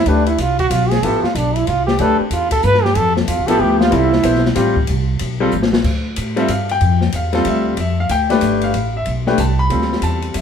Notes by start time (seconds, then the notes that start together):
0.06 D2 A3 D4 G4 B4, ride
0.26 E4, ride
0.38 C2 F4, hi-hat pedal, ride
0.59 F#4, kick, ride
0.70 B1 F4, hi-hat pedal, ride
0.90 G#4, snare, ride
1.03 A1 F3 B3 E4 G4 A4, ride
1.23 F4, muted upright bass stroke, snare
1.35 B1 D4, hi-hat pedal, ride
1.56 E4, ride
1.67 C2 F4, ride
1.86 G4, snare
1.99 D2 A3 D4 G4 A4 B4, ride
2.20 C4, muted upright bass stroke
2.31 E2 F4, hi-hat pedal, ride
2.51 A4, kick, ride
2.62 G2 B4, hi-hat pedal
2.74 snare
2.83 G4, snare
2.95 F2 A4, ride
3.16 C4, snare
3.28 E2 F4, hi-hat pedal, ride
3.39 C2
3.47 A1 F3 B3 E4 G4 A4, ride
3.60 D2 G4
3.80 F4, snare
3.91 C2 G3 C4 E4 F4 A4, ride
4.13 snare
4.23 B1 B3 E4 A4 C5, hi-hat pedal, ride
4.35 snare
4.46 snare
4.55 A1 G3 C4 F4 G4, hi-hat pedal, ride
4.76 kick
4.87 C2, ride
5.19 B1, ride
5.40 G3 C4 F4 A4
5.51 A1, hi-hat pedal
5.63 snare
5.73 snare
5.84 D2, kick, crash
6.16 A2, hi-hat pedal, ride
6.36 G3 C4 F4 A4 E5, ride
6.48 G2 F5, hi-hat pedal, ride
6.69 G5, ride
6.81 F2, ride
7.01 snare
7.12 E2 F5, hi-hat pedal, ride
7.33 G3 C4 F4 A4, snare, ride
7.45 D2 E5, ride
7.77 F2 E5, ride
8.00 F5
8.09 D2 G5, hi-hat pedal, ride
8.29 A3 D4 G4 B4, snare, ride
8.41 G1, hi-hat pedal, ride
8.62 F5, ride
8.74 A1, ride
8.97 E5
9.06 B1, ride
9.27 A3 D4 G4 B4 G5, snare
9.38 C2 A5, hi-hat pedal, ride
9.59 B5
9.70 D2 G3 C4 F4 A4, ride
9.82 snare
9.92 snare
10.02 E2 A5, hi-hat pedal, ride
10.22 ride
10.34 F2 E5, hi-hat pedal, ride